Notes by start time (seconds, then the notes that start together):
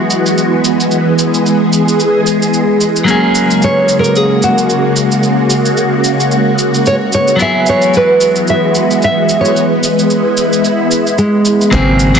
Already playing: E3 F#3 G#3 B3 E4 F#4 G#4
0.10 shaker
0.26 shaker
0.38 shaker
0.65 shaker
0.80 shaker
0.90 G#4, shaker
1.19 shaker
1.34 shaker
1.46 shaker
1.73 shaker
1.88 shaker
2.00 shaker
2.27 shaker
2.42 shaker
2.54 shaker
2.81 shaker
2.96 shaker
3.04 C#3 F#3 A#3 C#4 F#4, shaker
3.10 G#4
3.35 shaker
3.51 shaker
3.62 C#5, shaker
3.89 shaker
3.99 A#4
4.04 shaker
4.16 G#4, shaker
4.42 F#4, shaker
4.58 shaker
4.70 shaker
4.96 shaker
5.12 shaker
5.23 shaker
5.50 shaker
5.66 shaker
5.77 shaker
6.04 shaker
6.20 shaker
6.32 shaker
6.59 shaker
6.74 shaker
6.86 C#5, shaker
7.13 C#5, shaker
7.28 shaker
7.36 E3 F#3 G#3 B3, shaker
7.40 E4 G#4 E5
7.66 C#5, shaker
7.82 shaker
7.94 B4, shaker
8.21 shaker
8.36 shaker
8.47 E5, shaker
8.75 shaker
8.91 shaker
9.02 E5, shaker
9.29 shaker
9.41 C#5
9.45 shaker
9.56 E4, shaker
9.83 shaker
9.99 shaker
10.10 shaker
10.37 shaker
10.53 shaker
10.64 shaker
10.91 shaker
11.07 shaker
11.18 G#3, shaker
11.45 shaker
11.61 shaker
11.71 G#1 C#3 F#3 A#3 C4 F#4 G#4 A#4 D#5 G#5, kick, open hi-hat, shaker
12.00 shaker
12.14 C#3 F#3 A#3, open hi-hat, shaker